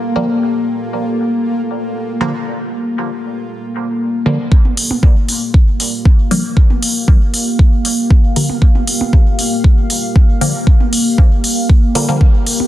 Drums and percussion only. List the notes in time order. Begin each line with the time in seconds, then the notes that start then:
4.52 kick
4.65 high tom
4.77 open hi-hat
4.91 high tom
5.03 kick
5.29 open hi-hat
5.54 kick
5.80 open hi-hat
6.05 kick
6.31 open hi-hat
6.57 kick
6.70 high tom
6.83 open hi-hat
7.08 kick
7.34 open hi-hat
7.59 kick
7.85 open hi-hat
8.10 kick
8.36 open hi-hat
8.49 high tom
8.62 kick
8.75 high tom
8.87 open hi-hat
9.01 high tom
9.13 kick
9.39 open hi-hat
9.64 kick
9.90 open hi-hat
10.16 kick
10.41 open hi-hat
10.67 kick
10.80 high tom
10.93 open hi-hat
11.18 kick
11.44 open hi-hat
11.70 kick
11.95 open hi-hat
12.21 kick
12.47 open hi-hat
12.60 high tom